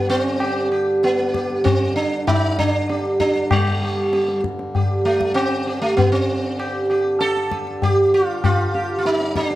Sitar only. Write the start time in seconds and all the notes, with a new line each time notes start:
0.10 B3
0.21 C4
0.41 G4
0.71 G4
1.04 B3
1.33 G4
1.64 C4
1.96 D4
2.27 D#4
2.59 D4
2.89 G4
3.20 D4
3.52 G3
3.83 G4
4.13 G4
4.76 G4
5.05 A3
5.34 C4
5.67 G4
5.82 A3
5.97 B3
6.12 C4
6.59 G4
6.91 G4
7.20 G4 A4
7.51 G4
7.83 G4
8.14 F4 G4
8.44 F4
8.74 G4
8.98 F4
9.06 D#4 G4
9.35 D4 G4